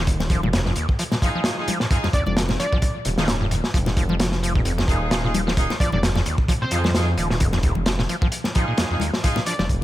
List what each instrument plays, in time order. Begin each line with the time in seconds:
Already playing: detuned saw bass D#1
0.07 kick, closed hi-hat
0.20 snare, muted conga
0.30 acid bass F3, kick, closed hi-hat
0.43 detuned saw bass F1, acid bass A#2, high conga, low conga
0.53 acid bass F2, snare, closed hi-hat
0.66 acid bass F2, snare
0.76 acid bass D#2, closed hi-hat
0.89 kick
0.99 acid bass F3, closed hi-hat
1.12 acid bass A#2, snare, muted conga
1.22 acid bass F3, horn section D#4 F4 G#4, kick, closed hi-hat
1.35 acid bass F3
1.44 snare, closed hi-hat
1.58 horn section D#4 F4 G#4
1.68 acid bass F3, closed hi-hat, high conga
1.80 acid bass A#2, snare
1.91 acid bass F2, horn section D#4 F4 G#4, kick, closed hi-hat
2.04 acid bass F2, snare, muted conga
2.13 acid bass D#2, digital synth lead D5, kick, closed hi-hat
2.26 detuned saw bass F1, digital synth lead D5, high conga, low conga
2.37 acid bass F3, snare, closed hi-hat
2.49 acid bass A#2, snare, muted conga
2.60 acid bass F3, digital synth lead D5, closed hi-hat
2.72 acid bass F3, kick
2.82 kick, closed hi-hat
3.05 detuned saw bass D#1, acid bass C3, closed hi-hat
3.18 detuned saw bass D#1, acid bass D#3, horn section D#4 F4 G#4, snare, high conga
3.28 acid bass F2, snare, closed hi-hat
3.41 acid bass G2
3.51 acid bass F2, closed hi-hat
3.64 snare
3.74 detuned saw bass F1, acid bass F3, kick, closed hi-hat
3.86 acid bass A#2, snare, muted conga
3.97 acid bass F3, kick, closed hi-hat
4.09 acid bass F3, high conga, low conga
4.20 snare, closed hi-hat
4.32 snare
4.43 acid bass F3, closed hi-hat
4.55 acid bass A#2, kick
4.65 acid bass F2, closed hi-hat
4.78 acid bass F2, snare, muted conga
4.88 detuned saw bass D#1, acid bass D#2, horn section D#4 F4 G#4, kick, closed hi-hat
5.11 acid bass F3, snare, closed hi-hat
5.24 acid bass A#2, horn section D#4 F4 G#4
5.34 acid bass F3, closed hi-hat, high conga
5.47 acid bass F3, snare
5.57 horn section D#4 F4 G#4, kick, closed hi-hat
5.70 snare, muted conga
5.80 acid bass F3, digital synth lead D5, kick, closed hi-hat
5.92 detuned saw bass F1, acid bass A#2, digital synth lead D5, high conga, low conga
6.03 acid bass F2, snare, closed hi-hat
6.15 acid bass F2, snare, muted conga
6.26 acid bass D#2, closed hi-hat
6.38 kick
6.48 acid bass F3, kick, closed hi-hat
6.62 acid bass A#2, digital synth lead C5
6.71 detuned saw bass F2, acid bass F3, horn section D#4 F4 G#4, closed hi-hat
6.84 acid bass F3, snare, high conga
6.95 horn section D#4 F4 G#4, snare, closed hi-hat
7.18 detuned saw bass D#1, acid bass F3, closed hi-hat
7.30 acid bass A#2, snare
7.40 acid bass F2, kick, closed hi-hat
7.53 acid bass F2, snare, muted conga
7.63 acid bass D#2, kick, closed hi-hat
7.75 detuned saw bass F1, high conga, low conga
7.86 acid bass F3, snare, closed hi-hat
7.99 acid bass A#2, snare
8.09 acid bass F3, closed hi-hat
8.22 acid bass F3, kick
8.32 closed hi-hat
8.44 snare, muted conga
8.55 acid bass F3, horn section D#4 F4 G#4, kick, closed hi-hat
8.68 acid bass A#2
8.78 acid bass F2, snare, closed hi-hat
8.91 acid bass F2, horn section D#4 F4 G#4
9.00 acid bass D#2, closed hi-hat, high conga
9.14 snare
9.24 acid bass F3, horn section D#4 F4 G#4, kick, closed hi-hat
9.36 acid bass A#2, snare, muted conga
9.46 acid bass F3, digital synth lead D5, closed hi-hat
9.59 detuned saw bass F1, acid bass F3, digital synth lead D5, snare, high conga, low conga
9.69 kick, closed hi-hat